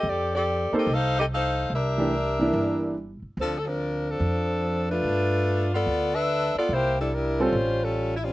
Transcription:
0.03 F2
0.07 C4 G4 A4 D5
0.35 C4 G4 A4 D5
0.72 A#3 D#4 A4 C5, muted upright bass stroke
0.77 C4 G4 A4 D#5
0.87 C2
0.92 D#4 A4 C5 F5
1.18 C4 G4 A4 D#5
1.33 D#4 A4 C5 F5
1.70 C2 D4 G4 A#4 E5
1.98 E3 A3 D4 G4
2.39 E3 A#3 D4 E4
2.53 G1
3.22 muted upright bass stroke
3.37 D2 F3 C4 D4 A4
3.58 A4
3.66 F3 C4 D4 A#4
4.08 F3 C4 D4 A4
4.20 F2
4.90 A3 D4 F4 B4
5.03 G2
5.73 B3 F4 A4 D5
5.86 D2
6.14 D4 A4 B4 E5
6.55 B3 F4 A4 D5, muted upright bass stroke
6.69 C2 A#3 E4 G4 C5
6.98 G3 D4 E4 A4
7.13 G3 D4 E4 A#4
7.40 G3 C4 C#4 F4 A4 C5
7.53 A1
7.82 G3 C#4 F4 A4
8.16 E4
8.23 G3 C4 C#4 F4

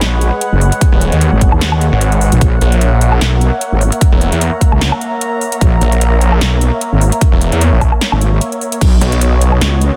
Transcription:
Already playing: G#3 G#4 B4 C#5 D#5 F#5 B5
0.01 A#1, snare, closed hi-hat
0.21 closed hi-hat
0.41 closed hi-hat
0.52 F#1
0.61 open hi-hat
0.72 closed hi-hat
0.81 kick, closed hi-hat
0.92 D#1
1.01 closed hi-hat
1.12 D#2, closed hi-hat
1.21 closed hi-hat
1.32 G#1
1.41 kick, closed hi-hat
1.52 D#2, low woodblock
1.61 snare, closed hi-hat
1.72 low woodblock
1.81 closed hi-hat
1.92 G#1
2.01 closed hi-hat
2.12 closed hi-hat
2.21 open hi-hat
2.32 A#1, closed hi-hat
2.41 A#1 A#3 A#4 C#5 E5, kick, closed hi-hat
2.61 A#1, closed hi-hat
2.72 closed hi-hat
2.81 closed hi-hat
3.01 closed hi-hat
3.12 low woodblock
3.21 B1, snare, closed hi-hat
3.33 A#5
3.41 closed hi-hat
3.61 closed hi-hat
3.72 G#1
3.81 open hi-hat
3.92 closed hi-hat
4.01 kick, closed hi-hat
4.12 E1
4.21 closed hi-hat
4.32 E2, closed hi-hat
4.41 closed hi-hat
4.61 kick, closed hi-hat
4.72 C#2, low woodblock
4.81 snare, closed hi-hat
4.92 low woodblock
5.01 closed hi-hat
5.21 closed hi-hat
5.41 open hi-hat
5.52 closed hi-hat
5.61 A#1, kick, closed hi-hat
5.81 A#1, closed hi-hat
5.92 closed hi-hat
6.01 closed hi-hat
6.21 closed hi-hat
6.32 low woodblock
6.41 B1, snare, closed hi-hat
6.61 closed hi-hat
6.81 closed hi-hat
6.92 G#1
7.01 open hi-hat
7.12 closed hi-hat
7.21 kick, closed hi-hat
7.32 E1
7.41 closed hi-hat
7.52 E2, closed hi-hat
7.61 closed hi-hat
7.72 A#1
7.81 kick, open hi-hat, low woodblock
7.92 low woodblock
8.01 snare, closed hi-hat
8.12 G#1, low woodblock
8.21 closed hi-hat
8.41 closed hi-hat
8.52 closed hi-hat
8.61 open hi-hat
8.72 closed hi-hat
8.81 B1 B3 F#4 A#4 D#5, kick, closed hi-hat, crash
9.01 B1, closed hi-hat
9.12 closed hi-hat
9.21 D#5, closed hi-hat
9.26 G#5
9.41 closed hi-hat
9.52 low woodblock
9.61 C#2, snare, closed hi-hat
9.81 closed hi-hat

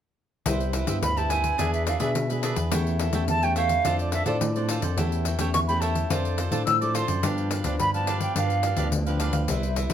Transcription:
0.46 C2 C3 B3 E4 G4 B4 C5 E5, pandeiro
0.60 pandeiro
0.73 E4 B4 C5 E5, pandeiro
0.87 G2 B3 E4 G4 B4 C5 E5, pandeiro
1.02 D2 G2 B5, pandeiro
1.17 B3 E4 G4 B4 C5 E5 A5, pandeiro
1.29 E4 B4 C5 E5 G#5, pandeiro
1.44 pandeiro
1.58 E2 E3 B3 D4 G#4 B4 E5, pandeiro
1.73 E5, pandeiro
1.86 D4 G#4 B4 E5 F5, pandeiro
1.99 B2 B3 D4 G#4 B4 E5, pandeiro
2.15 B2, pandeiro
2.29 B3 D4 G#4 B4 E5, pandeiro
2.43 D4 G#4 B4 E5, pandeiro
2.56 E2 G#4 B4 E5, pandeiro
2.71 E2 E3 A3 C#4 E4 G4 A4 C#5 G5, pandeiro
2.87 pandeiro
2.99 E4 A4 C#5 G5, pandeiro
3.13 E2 A3 C#4 E4 G4 A4 C#5 G5, pandeiro
3.28 E2 E3 A5, pandeiro
3.43 A3 C#4 G4 A4 C#5 G5, pandeiro
3.56 E4 A4 C#5 F5 G5, pandeiro
3.69 pandeiro
3.84 F2 F3 C4 D4 F4 A4 C5 D5, pandeiro
3.99 D5, pandeiro
4.12 F4 A4 C5 D5 E5, pandeiro
4.26 A2 C4 D4 F4 A4 C5 D5, pandeiro
4.41 A2 F3, pandeiro
4.56 C4 D4 A4 C5 D5, pandeiro
4.69 F4 A4 C5 D5, pandeiro
4.82 F2 A4 C5 D5, pandeiro
4.98 E2 E3 A3 C#4 E4 G4 A4 C#5 G5, pandeiro
5.12 pandeiro
5.25 E4 A4 C#5 G5, pandeiro
5.39 E2 A3 C#4 E4 G4 A4 C#5 G5, pandeiro
5.53 E2 E3 C#6, pandeiro
5.67 A3 C#4 G4 A4 C#5 G5 B5, pandeiro
5.80 E4 A4 C#5 G5 A5, pandeiro
5.95 pandeiro
6.10 F2 F3 C4 D4 F4 A4 C5 D5, pandeiro
6.25 pandeiro
6.38 F4 A4 C5 D5, pandeiro
6.52 A2 C4 D4 F4 A4 C5 D5, pandeiro
6.66 A2 F3 E6, pandeiro
6.81 C4 D4 A4 C5 D5 D6, pandeiro
6.94 F4 A4 C5 D5 C6, pandeiro
7.08 F#2 A4 C5 D5, pandeiro
7.23 G2 F3 B3 D4 G4 B4 F5, pandeiro
7.38 pandeiro
7.50 D4 G4 B4 F5, pandeiro
7.64 D2 F3 B3 D4 G4 B4 F5, pandeiro
7.79 G2 D3 B5, pandeiro
7.94 F3 B3 D4 G4 B4 F5 A5, pandeiro
8.07 D4 G4 B4 F5, pandeiro
8.21 G5, pandeiro
8.36 G2 F3 B3 D4 G4 B4 F5, pandeiro
8.50 pandeiro
8.63 D4 G4 B4 F5, pandeiro
8.77 D2 F3 B3 D4 G4 B4 F5, pandeiro
8.92 D2 D3, pandeiro
9.06 F3 B3 D4 G4 B4 F5, pandeiro
9.20 D4 G4 B4 F5, pandeiro
9.33 D2 G4 B4 F5, pandeiro
9.48 C2 C3 G3 B3 E4 B4 C5 E5, pandeiro
9.63 pandeiro
9.76 E4 B4 C5 E5, pandeiro
9.90 G2 G3 B3 E4 B4 C5, pandeiro

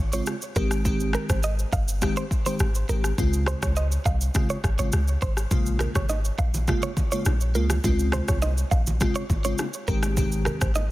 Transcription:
Already playing: G#1, downlifter
0.13 C#3 G#3 C4 F4 C#5, shaker
0.26 cross-stick, shaker
0.42 shaker
0.56 G#1 D#3 G#3 C4 G4 A#4, kick, shaker
0.71 cross-stick, shaker
0.85 D#3 G#3 C4 G4, kick, shaker
1.00 shaker
1.13 A#4, cross-stick, shaker
1.30 G#1 C5, kick, cross-stick, shaker
1.43 D#5, shaker
1.59 shaker
1.73 G1 F5, kick, shaker
1.88 shaker
2.02 D#3 G#3 C4 G4, kick, cross-stick, shaker
2.17 C5, shaker
2.31 kick, shaker
2.46 D#3 G#3 C4 G4 C5, shaker
2.59 G#1, cross-stick, shaker
2.75 shaker
2.89 G#1 D#3 G#3 C4 G4 A#4, shaker
3.04 cross-stick, shaker
3.18 C#2 C#3 G#3 C4 F4, kick, shaker
3.33 shaker
3.46 C5, cross-stick, shaker
3.63 C#2 C#5, kick, cross-stick, shaker
3.76 D#5, shaker
3.92 shaker
4.05 C2 F5, kick, shaker
4.21 shaker
4.34 A#1 C#3 G#3 C4 F4, kick, cross-stick, shaker
4.49 C#5, shaker
4.64 G#1, kick, cross-stick, shaker
4.79 G#1 C#3 G#3 C4 F4 C#5, shaker
4.92 C#2, cross-stick, shaker
5.08 shaker
5.22 G#1 C5, kick, shaker
5.37 cross-stick, shaker
5.51 A#1 C#3 G#3 A#3 F4, kick, low conga, shaker
5.66 shaker
5.79 A#4, cross-stick, low bongo, low conga, shaker
5.95 G#1 C#5, kick, cross-stick, shaker
6.09 D#5, high bongo, shaker
6.25 shaker
6.38 A#1 F5, kick, shaker
6.54 low bongo, shaker
6.68 C#3 G#3 A#3 F4, kick, cross-stick, low conga, shaker
6.82 C#5, shaker
6.97 kick, low bongo, shaker
7.12 C#3 G#3 A#3 F4 C#5, shaker
7.25 A#1, cross-stick, high bongo, shaker
7.41 shaker
7.55 C#2 C#3 G#3 A#3 F4 A#4, shaker
7.70 cross-stick, low bongo, shaker
7.84 C#2 C#3 G#3 C4 F4, kick, low conga, shaker
7.99 shaker
8.12 C5, cross-stick, low bongo, low conga, shaker
8.28 C2 C#5, kick, cross-stick, shaker
8.42 D#5, high bongo, shaker
8.58 shaker
8.71 A#1 F5, kick, shaker
8.87 low bongo, shaker
9.01 C#3 G#3 C4 F4, kick, cross-stick, low conga, shaker
9.15 C#5, shaker
9.30 G#1, kick, low bongo, shaker
9.45 C#3 G#3 C4 F4 C#5, shaker
9.58 cross-stick, high bongo, shaker
9.74 shaker
9.88 G#1 D#3 G#3 C4 G4 A#4, kick, shaker
10.03 cross-stick, low bongo, shaker
10.17 D#3 G#3 C4 G4, kick, riser, low conga, shaker
10.32 shaker
10.45 A#4, cross-stick, low bongo, low conga, shaker
10.61 G#1 C5, kick, cross-stick, shaker
10.75 D#5, high bongo, shaker

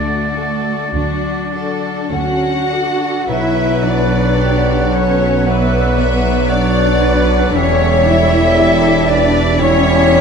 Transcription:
Already playing: D2 D3 A3 D4 F#4 A4 D5
0.35 F#4 A4
0.94 D2 D3 F#3 D4 F#4
1.53 D4 F#4 A4
2.11 D2 D3 C#4 D4 F#4 A4 F#5
2.71 D4 F#4 A4
3.28 B1 B2 F#3 E4 B4 E5 F#5
3.83 F#3 D4 D5
4.37 F#4 G4
4.92 C#4 A4 B4 C#5
5.45 F#3 B3 B4 D5 E5 F#5
5.97 F#3 D5 E5
6.48 F#3 D4 F#4 B4 C#5 D5 F#5
7.00 B4
7.54 E1 E2 G3 C#4 A4 C#5 E5
8.07 G3 E4 E5
8.57 E4 G4 A4
9.08 D4 G4 B4 D5
9.59 E2 G3 C#4 E4 C#5 E5
10.14 G3 B4

